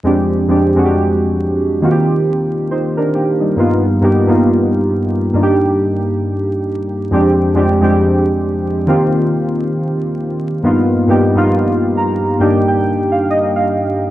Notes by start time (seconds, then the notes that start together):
0.03 F2 G#3 C4 D4 G4
0.48 F2 G#3 C4 D4 G4
0.75 F2 G#3 C4 D4 F#4
0.85 G4
1.81 D#3 A#3 C4 F4 F#4
1.91 G4
2.71 D#4 C5
2.97 D4 A#4
3.15 A#3 G4
3.40 G3 D#4
3.56 G2 A#3 B3 D#4 F4
4.01 G2 A#3 B3 D#4 G4
4.27 G2 A#3 B3 D#4 F4
5.34 G2 A#3 D4 D#4 F4
5.43 G4
7.10 F2 G#3 C4 D4 G4
7.54 F2 G#3 C4 D4 G4
7.80 F2 G#3 C4 D4 G4
8.86 D#3 A#3 C4 F4 G4
10.63 G2 A#3 B3 D#4 F4
11.07 G2 A#3 B3 D#4 G4
11.35 G2 A#3 B3 D#4 F4
11.97 A#5
12.39 G2 A#3 D4 D#4 G4 G5
12.68 G5
13.12 F5
13.30 D#5
13.56 F5